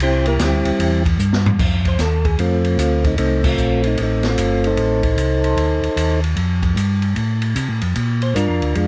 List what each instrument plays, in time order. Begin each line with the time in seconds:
0.00 tonewheel organ C2 C4 E4 G4 C5, kick, ride
0.26 tonewheel organ A#3 E4 G4 A#4, ride
0.39 tonewheel organ D2 C4, kick, snare, hi-hat pedal, ride
0.43 tonewheel organ G3 E4 G4
0.65 tonewheel organ D2, ride
0.79 tonewheel organ E2, kick, ride
1.06 kick, ride
1.19 tonewheel organ G2, hi-hat pedal
1.33 snare
1.46 floor tom
1.59 tonewheel organ F2, kick, crash
1.85 tonewheel organ C5, kick, ride
1.99 tonewheel organ D#2 A4, kick, snare, hi-hat pedal, ride
2.25 tonewheel organ G#4, kick, ride
2.39 tonewheel organ F2 A3 C4 F4, ride
2.65 ride
2.78 tonewheel organ D2 F4, kick, hi-hat pedal, ride
3.04 tonewheel organ D#4, kick, ride
3.18 tonewheel organ C2 A3 C4 D#4, kick, ride
3.44 tonewheel organ A3 C4 F4, kick, crash
3.57 tonewheel organ A#1, hi-hat pedal
3.83 tonewheel organ D#4, ride
3.97 tonewheel organ A1, kick, ride
4.02 tonewheel organ A3 C4 D#4
4.23 snare, ride
4.29 tonewheel organ A3 C4 F4
4.37 tonewheel organ G1, kick, hi-hat pedal, ride
4.64 tonewheel organ D#4 A4 C5, ride
4.77 tonewheel organ A1, kick, ride
5.03 kick, ride
5.17 tonewheel organ C2, kick, hi-hat pedal, ride
5.44 ride
5.57 tonewheel organ D2, kick, ride
5.82 tonewheel organ D2, ride
5.96 tonewheel organ D#2, kick, hi-hat pedal, ride
6.24 ride
6.36 tonewheel organ F2, kick, ride
6.62 kick, ride
6.76 tonewheel organ G2, kick, hi-hat pedal, ride
7.02 ride
7.16 tonewheel organ A2, kick, ride
7.42 ride
7.56 tonewheel organ C3, kick, hi-hat pedal, ride
7.69 tonewheel organ A2
7.81 tonewheel organ F2, ride
7.96 tonewheel organ A#2, kick, ride
8.22 tonewheel organ C5, ride
8.34 tonewheel organ G2 D4 F4 A#4, kick, hi-hat pedal, ride
8.49 tonewheel organ F2
8.62 tonewheel organ D2, ride
8.75 tonewheel organ F2 G#3 D4 F4, kick, ride